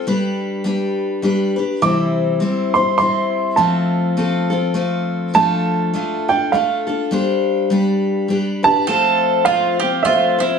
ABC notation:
X:1
M:3/4
L:1/8
Q:"Swing" 1/4=102
K:Flyd
V:1 name="Upright piano"
z6 | d'3 c' c'2 | a4 z2 | a3 g f2- |
f4 z a- | a2 f2 e2 |]
V:2 name="Mandolin"
z6 | z6 | z6 | z6 |
z6 | A2 F G F E |]
V:3 name="Steel-string acoustic guitar"
[G,DGB]2 [G,DGB]2 [G,DGB] [DGB] | [C,E,G,CEc]2 [G,CEc] [G,CEc] [G,CEc]2 | [F,A,CFA]2 [A,CFA] [CFA] [A,CFA]2 | [F,A,DFA]2 [A,DFA] [DFA] [A,DFA] [DFA] |
[G,DGc]2 [G,DGB]2 [G,DGB] [DGB] | [F,A,CFc]2 [A,CFc] [CFc] [A,CFc] [CFc] |]